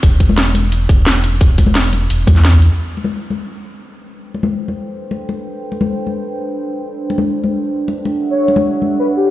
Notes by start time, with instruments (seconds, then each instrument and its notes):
0.03 sub bass E1, kick, closed hi-hat
0.20 kick, closed hi-hat, muted conga
0.29 high conga
0.38 snare, closed hi-hat
0.54 closed hi-hat, high conga
0.72 closed hi-hat
0.89 sub bass E1, kick, closed hi-hat
1.06 snare, closed hi-hat
1.15 closed hi-hat
1.24 closed hi-hat
1.41 kick, closed hi-hat
1.58 kick, closed hi-hat, muted conga
1.66 high conga
1.75 snare, closed hi-hat
1.84 closed hi-hat
1.93 closed hi-hat, muted conga, high conga
2.10 sub bass E1, closed hi-hat
2.27 sub bass E2, kick, closed hi-hat, high conga
2.36 snare, closed hi-hat, muted conga
2.45 snare, closed hi-hat
2.53 kick, closed hi-hat
2.62 closed hi-hat
2.79 analog synth pad D4 A4 B4 C5 G5
2.97 muted conga
3.04 high conga
3.30 high conga
4.34 muted conga
4.43 high conga
4.68 high conga
5.11 muted conga
5.29 muted conga
5.72 muted conga
5.81 high conga
6.07 high conga
7.10 muted conga
7.18 high conga
7.44 muted conga, high conga
7.88 muted conga
8.05 muted conga
8.14 analog synth pad G4 A4 E5 F#5
8.30 soft synth lead C#5
8.48 muted conga
8.56 high conga
8.82 high conga
8.99 soft synth lead B4
9.17 soft synth lead G4